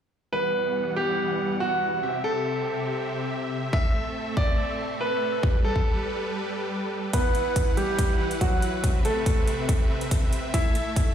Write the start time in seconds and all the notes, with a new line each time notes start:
0.32 E3 G3 B3 B4 F#5
0.96 G4
1.60 F#4
2.03 C3 C4 G4 E5
2.24 A4
3.73 A3 C4 A4 E5, kick
4.37 D5, kick
5.01 B4
5.43 G3 G4 B4, kick
5.65 A4
5.76 kick
7.13 E3 B3 E4 B4 F#5, kick, closed hi-hat
7.35 closed hi-hat
7.56 kick, closed hi-hat
7.77 G3 G4, closed hi-hat
7.99 kick, closed hi-hat
8.31 closed hi-hat
8.41 F#3 F#4, kick, closed hi-hat
8.62 closed hi-hat
8.84 C3 C4 E5, kick, closed hi-hat
9.05 A3 A4, closed hi-hat
9.26 kick, closed hi-hat
9.47 closed hi-hat
9.69 kick, closed hi-hat
10.01 closed hi-hat
10.11 kick, closed hi-hat
10.33 closed hi-hat
10.54 A3 E4 A4 E5, kick, closed hi-hat
10.75 closed hi-hat
10.96 kick, closed hi-hat